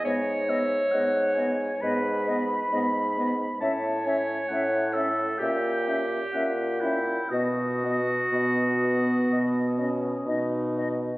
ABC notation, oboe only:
X:1
M:4/4
L:1/8
Q:1/4=66
K:Bmix
V:1 name="Oboe"
g e f g b4 | a g f e =g z f g | d6- d z |]